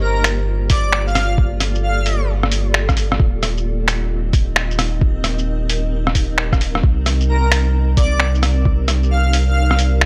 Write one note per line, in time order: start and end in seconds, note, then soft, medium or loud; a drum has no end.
0.00 3.18 G1 medium
0.00 4.64 A#3 medium
0.00 4.68 F4 medium
0.00 6.83 G4 medium
0.00 0.26 A#4 medium
0.00 0.45 C5 medium
0.00 3.20 D5 medium
0.24 finger snap loud
0.24 open hi-hat medium
0.24 shaker medium
0.38 3.20 A4 medium
0.70 0.94 D5 loud
0.70 kick loud
0.70 open hi-hat medium
0.70 shaker medium
0.93 finger snap loud
1.07 1.31 F5 medium
1.07 shaker soft
1.15 cross-stick medium
1.15 open hi-hat medium
1.15 shaker medium
1.38 kick loud
1.60 cross-stick soft
1.60 open hi-hat medium
1.60 shaker medium
1.75 shaker soft
1.83 2.21 F5 medium
2.06 open hi-hat medium
2.06 shaker medium
2.43 cross-stick medium
2.52 open hi-hat medium
2.52 shaker medium
2.74 finger snap loud
2.89 kick loud
2.89 cross-stick medium
2.89 shaker soft
2.97 open hi-hat medium
2.97 shaker medium
3.12 cross-stick medium
3.20 6.82 D#1 medium
3.20 10.06 C4 medium
3.20 kick loud
3.43 cross-stick soft
3.43 open hi-hat medium
3.43 shaker medium
3.57 shaker soft
3.65 10.06 D#4 medium
3.65 6.83 D#5 medium
3.88 finger snap loud
3.88 open hi-hat medium
3.88 shaker medium
4.33 10.06 A#4 medium
4.33 kick loud
4.33 open hi-hat medium
4.33 shaker medium
4.56 finger snap loud
4.71 shaker soft
4.79 cross-stick medium
4.79 open hi-hat medium
4.79 shaker medium
5.01 kick loud
5.24 cross-stick soft
5.24 open hi-hat medium
5.24 shaker medium
5.38 shaker soft
5.70 open hi-hat medium
5.70 shaker medium
6.07 cross-stick medium
6.15 kick medium
6.15 open hi-hat medium
6.15 shaker medium
6.38 finger snap loud
6.53 kick loud
6.53 cross-stick medium
6.53 shaker soft
6.61 open hi-hat medium
6.61 shaker medium
6.75 cross-stick medium
6.83 10.06 C2 medium
6.83 kick loud
7.06 cross-stick soft
7.06 open hi-hat medium
7.06 shaker medium
7.21 shaker soft
7.29 7.53 A#4 medium
7.52 finger snap loud
7.52 open hi-hat medium
7.52 shaker medium
7.72 10.06 G4 medium
7.97 8.21 D5 loud
7.97 kick loud
7.97 open hi-hat medium
7.97 shaker medium
8.20 finger snap loud
8.35 shaker soft
8.43 cross-stick medium
8.43 open hi-hat medium
8.43 shaker medium
8.49 10.06 D5 medium
8.65 kick loud
8.88 cross-stick soft
8.88 open hi-hat medium
8.88 shaker medium
9.03 shaker soft
9.11 9.35 F5 loud
9.33 open hi-hat medium
9.33 shaker medium
9.48 9.79 F5 loud
9.71 cross-stick medium
9.79 open hi-hat medium
9.79 shaker medium
10.01 finger snap loud